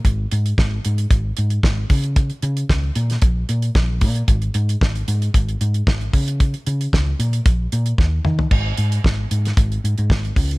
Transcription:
<<
  \new Staff \with { instrumentName = "Fingered electric bass" } { \clef bass \time 4/4 \key cis \mixolydian \tempo 4 = 113 gis,,8 gis,8 gis,,8 gis,8 gis,,8 gis,8 gis,,8 cis8~ | cis8 cis8 cis,8 ais,8 ais,,8 ais,8 ais,,8 ais,8 | gis,,8 gis,8 gis,,8 gis,8 gis,,8 gis,8 gis,,8 cis8~ | cis8 cis8 cis,8 ais,8 ais,,8 ais,8 dis,8 dis8 |
gis,,8 gis,8 gis,,8 gis,8 gis,,8 gis,16 gis,16 gis,,8 cis,8 | }
  \new DrumStaff \with { instrumentName = "Drums" } \drummode { \time 4/4 <hh bd>8 hh16 hh16 <bd sn>8 hh16 hh16 <hh bd>8 hh16 hh16 <bd sn>8 <hho bd>16 hh16 | <hh bd>16 hh16 hh16 hh16 <bd sn>8 hh16 <hh sn>16 <hh bd>8 hh16 hh16 <bd sn>8 <hho bd>16 hh16 | <hh bd>16 hh16 hh16 hh16 <bd sn>16 hh16 hh16 hh16 <hh bd>16 hh16 hh16 hh16 <bd sn>16 hh16 <hho bd>16 hh16 | <hh bd>16 hh16 hh16 hh16 <bd sn>8 hh16 hh16 <hh bd>8 hh16 hh16 <bd sn>8 toml16 tomfh16 |
<cymc bd>8 hh16 hh16 <bd sn>8 hh16 <hh sn>16 <hh bd>16 hh16 hh16 hh16 <bd sn>16 hh16 <hho bd>16 hh16 | }
>>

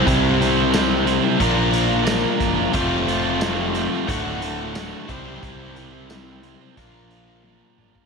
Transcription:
<<
  \new Staff \with { instrumentName = "Overdriven electric guitar" } { \time 4/4 \key c \lydian \tempo 4 = 89 <c g c' e' g' c''>8 <c' e' g' c''>16 <c' e' g' c''>16 <c g c' e' g' c''>8 <c' e' g' c''>16 <c' e' g' c''>16 <bes, f bes d' f' bes'>16 <bes d' f' bes'>16 <bes d' f' bes'>8 <bes, f bes d' f' bes'>8 <bes d' f' bes'>16 <bes d' f' bes'>16 | <f, c f a c' f'>8 <f a c' f'>16 <f a c' f'>16 <f, c f a c' f'>8 <f a c' f'>16 <f a c' f'>16 <d, a, d a fis'>16 <d a fis'>16 <a, d a fis'>8 <d, a, d a fis'>8 <c g c' e' g' c''>16 <c' e' g' c''>16 | <c g c' e' g' c''>8 <c' e' g' c''>16 <c' e' g' c''>16 <c g c' e' g' c''>8 <c' e' g' c''>16 <c' e' g' c''>16 <bes, f bes d' f' bes'>16 <bes d' f' bes'>16 <bes d' f' bes'>8 <bes, f bes d' f' bes'>8 <bes d' f' bes'>16 <bes d' f' bes'>16 | }
  \new Staff \with { instrumentName = "Overdriven electric guitar" } { \time 4/4 \key c \lydian <c g c' e' g' c''>2 <bes, f bes d' f' bes'>2 | <f, c f a c' f'>2 <d, a, d a fis'>4. <c g c' e' g' c''>8~ | <c g c' e' g' c''>2 <bes, f bes d' f' bes'>2 | }
  \new Staff \with { instrumentName = "Fingered electric bass" } { \clef bass \time 4/4 \key c \lydian c,2 bes,,4. fis,,8 | f,,2 d,,4. c,8 | c,2 bes,,4. g,,8 | }
  \new DrumStaff \with { instrumentName = "Drums" } \drummode { \time 4/4 <hh bd>8 hh8 <hh sn tamb>8 hh8 <hh bd>8 hh8 <hh sn tamb>8 <hh bd>8 | <hh bd>8 hh8 <hh sn tamb>8 hh8 <hh bd>8 hh8 <hh sn tamb>8 <hh bd>8 | <hh bd>8 hh8 <hh sn tamb>8 hh8 <hh bd>8 hh8 tommh8 toml16 bd16 | }
>>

